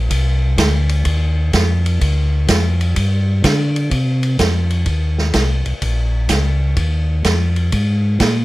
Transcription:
0.10 C2, kick, ride
0.58 D2, kick, snare, hi-hat pedal, ride
0.89 ride
1.05 D#2, kick, ride
1.53 F2, kick, snare, hi-hat pedal, ride
1.86 ride
2.01 D2, kick, ride
2.48 F2, kick, snare, hi-hat pedal, ride
2.81 ride
2.96 G2, kick, ride
3.44 D3, kick, snare, hi-hat pedal, ride
3.76 ride
3.91 C3, kick, ride
4.23 ride
4.39 F2, kick, snare, hi-hat pedal, ride
4.70 ride
4.86 D#2, kick, ride
5.18 snare
5.34 C2, kick, snare, hi-hat pedal, ride
5.66 C2, ride
5.82 A#1, kick, ride
6.29 C#2, kick, snare, hi-hat pedal, ride
6.77 D#2, kick, ride
7.24 F2, kick, snare, hi-hat pedal, ride
7.56 ride
7.72 G#2, kick, ride
8.20 A#2, kick, snare, hi-hat pedal, ride

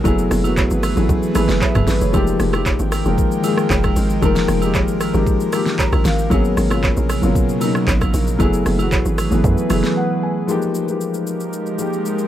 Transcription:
0.04 F#1 E3 F#3 A3 B3 E4 G#4 B4, kick, high agogo, shaker
0.18 shaker
0.31 F#1, cross-stick, open hi-hat, shaker
0.44 F#3 A3 B3 E4 F#4, high agogo, shaker
0.57 kick, clap, low woodblock, shaker
0.71 G#1, shaker
0.83 cross-stick, open hi-hat, high agogo, shaker
0.96 G#1 F#3 A3 B3 E4 G#4, shaker
1.09 A1, kick, shaker
1.23 shaker
1.34 G#1 F#3 A3 B3 E4 G#4 B5, cross-stick, open hi-hat, high agogo, shaker
1.49 F#1, snare, shaker
1.62 E5, kick, clap, low woodblock, shaker
1.75 F#1 A4, kick, cross-stick, mid tom, high agogo, shaker
1.88 G#1 B4, snare, open hi-hat, shaker
2.01 F#1 C#5, shaker
2.12 F1 D#3 F3 G#3 A#3 D#4 G4 A#4 G5, kick, high agogo, shaker
2.27 shaker
2.40 F1, cross-stick, open hi-hat, shaker
2.52 F3 G#3 A#3 D#4 G4, cross-stick, high agogo, shaker
2.66 kick, clap, low woodblock, shaker
2.79 G#1, shaker
2.92 cross-stick, open hi-hat, high agogo, shaker
3.04 F1 F3 G#3 A#3 D#4 A#4, shaker
3.18 kick, shaker
3.31 shaker
3.43 F3 G#3 A#3 D#4 G#4, open hi-hat, high agogo, shaker
3.58 cross-stick, shaker
3.70 F1, kick, clap, low woodblock, shaker
3.84 kick, cross-stick, high agogo, shaker
3.96 G#1, open hi-hat, shaker
4.10 shaker
4.21 F1 F3 G#3 A#3 D#4 A#4, kick, high agogo, shaker
4.36 snare, shaker
4.48 F1, cross-stick, open hi-hat, shaker
4.61 F3 G#3 A#3 D#4 G4, high agogo, shaker
4.75 kick, clap, low woodblock, shaker
4.88 G#1, shaker
5.01 cross-stick, open hi-hat, high agogo, shaker
5.13 G#1 F3 G#3 A#3 D#4 G4, shaker
5.27 kick, shaker
5.40 shaker
5.52 F3 G#3 A#3 D#4 G4, cross-stick, open hi-hat, high agogo, shaker
5.66 snare, shaker
5.79 A#5, kick, clap, low woodblock, shaker
5.92 A#1, kick, cross-stick, high agogo, shaker
6.05 G#1 F5, snare, open hi-hat, shaker
6.19 shaker
6.30 G#1 B2 C#3 F#3 A#3 B3 C#4 G#4, kick, high agogo, shaker
6.45 shaker
6.57 G#1, cross-stick, open hi-hat, shaker
6.70 F#3 A#3 B3 C#4 F4, cross-stick, high agogo, shaker
6.84 kick, clap, low woodblock, shaker
6.97 A#1, shaker
7.09 cross-stick, open hi-hat, high agogo, shaker
7.22 G#1 F#3 A#3 B3 C#4 F4, shaker
7.35 kick, shaker
7.49 shaker
7.60 F#3 A#3 B3 C#4 D#4, open hi-hat, high agogo, shaker
7.75 cross-stick, shaker
7.88 G#1, kick, clap, low woodblock, shaker
8.01 kick, cross-stick, high agogo, shaker
8.14 A#1, open hi-hat, shaker
8.27 shaker
8.39 F#1 E3 F#3 A3 B3 E4 G#4 B4, kick, high agogo, shaker
8.53 shaker
8.66 F#1, cross-stick, open hi-hat, shaker
8.78 F#3 A3 B3 E4 F#4, high agogo, shaker
8.92 kick, clap, low woodblock, shaker
9.05 G#1, shaker
9.18 cross-stick, open hi-hat, high agogo, shaker
9.31 G#1 F#3 A3 B3 E4 G#4, shaker
9.44 F#2, kick, shaker
9.58 shaker
9.69 F#1 F#3 A3 B3 E4 G#4, cross-stick, open hi-hat, high agogo, shaker
9.84 snare, shaker
9.97 F#5
10.23 G#5
10.47 F3 G#3 A#3 D#4 G4 A#4, shaker
10.62 shaker
10.75 shaker
10.87 F3 G#3 A#3 D#4 G4, shaker
11.01 shaker
11.14 shaker
11.27 shaker
11.40 shaker
11.53 shaker
11.66 shaker
11.78 F3 G#3 A#3 D#4 G4, shaker
11.93 shaker
12.06 shaker
12.19 shaker

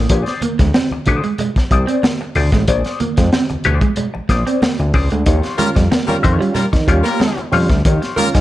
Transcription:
0.09 A#1 G4 B4 C#5, kick, closed hi-hat, muted conga
0.23 G#4 C5 D5, closed hi-hat
0.27 muted clean electric guitar stroke, snare, muted conga
0.41 A#3, closed hi-hat, high conga
0.59 D2 G#3, muted clean electric guitar stroke, kick, snare, closed hi-hat
0.74 C4, muted clean electric guitar stroke, snare, high conga
0.91 D2, muted clean electric guitar stroke, high conga
1.06 D2 G#4 C5 D5, muted clean electric guitar stroke, kick, closed hi-hat, high conga, low conga
1.24 G#3, muted clean electric guitar stroke, closed hi-hat
1.38 G#3, muted clean electric guitar stroke, closed hi-hat, low conga
1.56 C2, muted clean electric guitar stroke, kick, snare, closed hi-hat, muted conga
1.71 C2 G#4 C5 D5, muted clean electric guitar stroke, kick, closed hi-hat
1.87 C4 G#4 C5 D5, closed hi-hat
2.03 A#3, muted clean electric guitar stroke, snare, high conga
2.21 muted clean electric guitar stroke
2.35 D2 G#4 C5 D5, open hi-hat, high conga, low conga
2.52 A1 G#3, muted clean electric guitar stroke, kick, snare, closed hi-hat
2.68 A#1 G#4 C5 D5, kick, closed hi-hat, muted conga
2.85 muted clean electric guitar stroke, snare, closed hi-hat
3.00 A#3, closed hi-hat, high conga
3.17 F2 G#3, muted clean electric guitar stroke, kick, snare, closed hi-hat
3.33 C4, muted clean electric guitar stroke, snare, high conga
3.50 D2, muted clean electric guitar stroke, closed hi-hat, muted conga, high conga
3.64 D2 G#4 C5 D5, muted clean electric guitar stroke, closed hi-hat, high conga, low conga
3.81 G#3, muted clean electric guitar stroke, kick, closed hi-hat
3.96 G#3, muted clean electric guitar stroke, closed hi-hat, muted conga, low conga
4.14 A#1, muted clean electric guitar stroke, muted conga
4.29 A#1 G#4 C5 D5, muted clean electric guitar stroke, kick, snare, closed hi-hat
4.47 C4 G#4 C5 D5, closed hi-hat
4.62 A#3, muted clean electric guitar stroke, snare, muted conga, high conga
4.79 D2, muted clean electric guitar stroke, closed hi-hat, muted conga
4.94 C#2 G#4 C5 D5, kick, open hi-hat, high conga, low conga
5.10 D2 G#3, muted clean electric guitar stroke, closed hi-hat
5.26 D#2 D#3 F4 G4 C#5, kick, closed hi-hat, muted conga
5.43 muted clean electric guitar stroke, snare, closed hi-hat, muted conga
5.58 G3 G#3 A#3 C#4 F4 A#4, closed hi-hat, high conga
5.76 F2 G3, muted clean electric guitar stroke, kick, snare, closed hi-hat
5.91 A#3, muted clean electric guitar stroke, snare, muted conga, high conga
6.06 F2 G3 A#3 C#4 F4 A#4, muted clean electric guitar stroke, closed hi-hat, high conga
6.23 F2 D#3 F4 G4 C#5, muted clean electric guitar stroke, kick, closed hi-hat, high conga, low conga
6.40 G3 C#4 F4, muted clean electric guitar stroke, closed hi-hat
6.54 G3 A#3 C#4 F4 A#4, muted clean electric guitar stroke, closed hi-hat, muted conga, low conga
6.73 D#2 D#3, muted clean electric guitar stroke, kick, snare, closed hi-hat, muted conga
6.87 D#2 G3 C#4 F4 G4 C#5, muted clean electric guitar stroke, kick, closed hi-hat
7.03 G3 A#3 F4 G4 A#4 C#5, closed hi-hat
7.20 G#3, muted clean electric guitar stroke, snare, high conga
7.38 muted clean electric guitar stroke, closed hi-hat, muted conga
7.52 F2 G3 C#4 F4 G4 C#5, open hi-hat, high conga, low conga
7.70 D2 G3, muted clean electric guitar stroke, kick, snare, closed hi-hat
7.85 D#2 D#3 F4 G4 C#5, kick, closed hi-hat, muted conga
8.02 muted clean electric guitar stroke, snare, closed hi-hat, muted conga
8.16 G3 G#3 A#3 C#4 F4 A#4, closed hi-hat, high conga
8.35 G#2 G3, muted clean electric guitar stroke, kick, snare, closed hi-hat

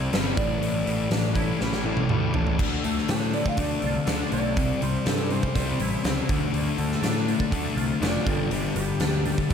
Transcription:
Already playing: C3 G3 C4 E4
0.12 G1 C3 G3 C4, snare, open hi-hat
0.36 A1 A2 E3 A3 D5, kick, open hi-hat
0.61 A1 A2 E3 A3, open hi-hat
0.85 A1 A2 E3 G3 A3, open hi-hat
1.10 A1 A2 E3 A3 D4, snare, open hi-hat
1.35 A2 E3 A3 E4, kick, open hi-hat
1.60 A1 A2 E3 G3 A3, snare
1.72 snare
1.84 A1 A2 E3 A3 D4
1.97 high tom
2.09 D2 A2 E3 G3 A3, mid tom
2.34 A1 A2 E3 A3 D4, floor tom
2.47 floor tom
2.59 D2 D3 A3 D4, kick, crash
2.84 D2 D3 A3, open hi-hat
2.98 snare
3.08 A2 D3 A3 D4 A4, snare, open hi-hat
3.20 C5
3.33 D3 A3 D5, open hi-hat
3.46 F5, kick
3.57 D2 D3 A3 D4 D5, kick, open hi-hat
3.82 C2 D3 A3 F4, open hi-hat
4.07 D2 D3 A3 D4, snare, open hi-hat
4.32 B1 D3 A3 D5, open hi-hat
4.57 C2 C3 G3 C4, kick, open hi-hat
4.81 C2 C3 G3 C5, open hi-hat
5.05 G2 C3 G3 C4 A4, snare, open hi-hat
5.30 C3 E3 G3 C5, open hi-hat
5.43 kick
5.55 C2 C3 G3 C4 C5, kick, open hi-hat
5.80 A1 C3 G3 E4, open hi-hat
6.04 C#2 C3 G3 C4, snare, open hi-hat
6.29 D2 D3 A3 D4, kick, open hi-hat
6.53 D2 D3 A3 D4, open hi-hat
6.78 D2 D3 A3, open hi-hat
6.92 snare
7.02 A2 D3 A3 D4, snare, open hi-hat
7.27 D3 A3, open hi-hat
7.40 kick
7.51 D2 D3 A3 D4, kick, open hi-hat
7.76 C2 D3 A3 F4, open hi-hat
8.00 F1 D3 A3 D4 F4 D5, snare, open hi-hat
8.25 G1 G2 D3 G3 F4 A4, kick, open hi-hat
8.50 G1 G2 D3 G3 B3 G4, open hi-hat
8.75 G1 G2 D3 B3 G4, open hi-hat
9.00 D2 G2 D3 D4, snare, open hi-hat
9.25 G2 D3 G3, open hi-hat
9.38 kick
9.50 G1 G2 D3 B3, kick, open hi-hat

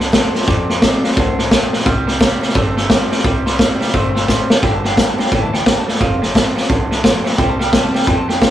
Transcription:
Already playing: C2 C3
0.00 F2 D3
0.12 F2 C3 F3 A3 C4 F4 A4, kick, snare, hi-hat pedal
0.34 F2 C3 C4 F4, muted upright bass stroke, snare
0.41 snare
0.47 F2 C3 D5, kick, snare
0.69 F2 C3 C5, snare
0.82 F2 C3 F3 A3 C4 F4 D5, kick, snare, hi-hat pedal
1.04 F2 C3 C4 F4, muted upright bass stroke, snare
1.10 snare
1.16 C2 F2 A2 D3 C5, kick, snare
1.38 F2 D3, snare
1.51 A#2 C3 A4, kick, snare, hi-hat pedal
1.72 F2 C3, muted upright bass stroke, snare
1.79 snare
1.86 C2 C3 G3, kick, snare
2.07 C3 G3, snare
2.19 C3 E3 G3 C4 E4, kick, snare, hi-hat pedal
2.41 C3 G3 C4 E4, muted upright bass stroke, snare
2.49 snare
2.55 G1 G2 C3 A3, kick, snare
2.77 C3 A3, snare
2.90 C3 E3 G3 C4 E4 A4, kick, snare, hi-hat pedal
3.11 C3 G3 C4 E4, muted upright bass stroke, snare
3.18 snare
3.24 C2 C3 G3 D5, kick, snare
3.46 C3 G3 C5, snare
3.58 C3 E3 G3 C4 E4 D5, kick, snare, hi-hat pedal
3.80 C3 G3 C4 E4, muted upright bass stroke, snare
3.88 snare
3.94 G1 A#2 C3 A3 C5, kick, snare
4.15 C3 A3, snare
4.28 A2 C3 G3 C5, kick, snare, hi-hat pedal
4.50 C3 G3, muted upright bass stroke, snare
4.63 G1 G2 D3 G5, kick, snare
4.74 A5
4.84 G2 D3 G5, snare
4.97 G2 D3 G3 B3 G4 G5, kick, snare, hi-hat pedal
5.09 A5
5.18 G2 D3 B3 G4 G5, muted upright bass stroke, snare
5.26 snare
5.31 D2 G2 A2 E3 G5, kick, snare
5.43 A5
5.53 G2 E3 G5, snare
5.66 G2 D3 G5, kick, snare, hi-hat pedal
5.77 A5
5.88 G2 D3 G5, muted upright bass stroke, snare
5.94 snare
6.00 F1 F2 C3 F5, kick, snare
6.22 F2 C3, snare
6.34 F2 C3 F3 A3 C4 F4, kick, snare, hi-hat pedal
6.56 F2 C3 C4 F4, muted upright bass stroke, snare
6.63 snare
6.69 C2 F2 C3 D3, kick, snare
6.91 F2 D3, snare
7.03 F2 C3 F3 A3 C4 F4, kick, snare, hi-hat pedal
7.24 F2 C3 C4 F4, muted upright bass stroke, snare
7.32 snare
7.38 C2 C3 G3 G5, kick, snare
7.49 A5
7.59 C3 G3 G5, snare
7.72 C3 E3 G3 C4 E4 G5, kick, snare, hi-hat pedal
7.84 A5
7.94 C3 G3 C4 E4 G5, muted upright bass stroke, snare
8.01 snare
8.07 F2 C3 G5, kick, snare
8.18 A5
8.28 F2 D3 G5, snare
8.41 F2 C3 F3 A3 C4 F4 G5, kick, snare, hi-hat pedal

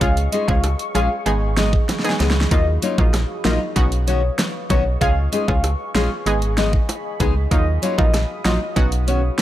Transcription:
Already playing: C#6
0.01 C#2 G#3 C#4 F4 G#4 F5, kick, closed hi-hat
0.17 closed hi-hat
0.32 G#3 C#4 F4 G#4 D#5, closed hi-hat
0.48 C#2 G#3 C#4 F4 G#4 F5, kick, high bongo
0.64 cross-stick, closed hi-hat, high bongo
0.79 closed hi-hat
0.94 A#1 G#3 C#4 F4 G#4 F5, closed hi-hat
1.26 G#1 G#3 B3 D#4 G#4 D#5 B5, closed hi-hat
1.57 G#3 B3 D#4 G#4 D#5, snare, closed hi-hat
1.73 muted nylon-string guitar stroke, kick
1.89 snare, closed hi-hat, high bongo
1.99 snare
2.04 G#3 B3 D#4 G#4, closed hi-hat
2.10 snare
2.20 C#2 G#3 B3 D#4 G#4, snare, closed hi-hat, high bongo, low bongo
2.30 snare
2.41 snare
2.51 D#2 F#3 A#3 D#4 F4 D#5 F5 D#6, kick, closed hi-hat
2.82 F#3 A#3 D#4 F4 C#5, closed hi-hat
2.98 A#1 F#3 A#3 D#4 F4 D#5, kick, high bongo
3.14 cross-stick, snare, closed hi-hat, high bongo
3.45 A#1 F#3 A#3 D#4 F4 D#5, snare, closed hi-hat
3.76 B1 B3 C#4 D#4 F#4 B4 D#5 C#6, kick, closed hi-hat
3.92 closed hi-hat
4.07 D#3 B3 C#4 F#4 C#5, closed hi-hat
4.39 snare, closed hi-hat, high bongo
4.69 B1 D#3 B3 C#4 D#4 F#4 C#5, kick, closed hi-hat, high bongo, low bongo
5.01 C#2 G#3 C#4 F4 G#4 F5, kick, closed hi-hat
5.32 G#3 C#4 F4 G#4 D#5, closed hi-hat
5.48 C#2 G#3 C#4 F4 G#4 F5, kick, high bongo
5.64 cross-stick, closed hi-hat, high bongo
5.95 A#1 G#3 C#4 F4 G#4 F5, snare, closed hi-hat
6.26 G#1 G#3 B3 D#4 G#4 D#5 B5, closed hi-hat
6.42 closed hi-hat
6.57 G#3 B3 D#4 G#4 D#5, snare, closed hi-hat
6.73 muted nylon-string guitar stroke, kick
6.89 closed hi-hat, high bongo
7.20 C#2 G#3 B3 D#4 G#4, kick, closed hi-hat, high bongo, low bongo
7.51 D#2 F#3 A#3 D#4 F4 D#5 F5 D#6, kick, closed hi-hat
7.82 F#3 A#3 D#4 F4 C#5, closed hi-hat
7.98 A#1 F#3 A#3 D#4 F4 D#5, kick, high bongo
8.14 cross-stick, snare, closed hi-hat, high bongo
8.44 A#1 F#3 A#3 D#4 F4 D#5, snare, closed hi-hat
8.76 B1 B3 C#4 D#4 F#4 B4 D#5 C#6, kick, closed hi-hat
8.92 closed hi-hat
9.07 D#3 B3 C#4 F#4 C#5, closed hi-hat
9.38 snare

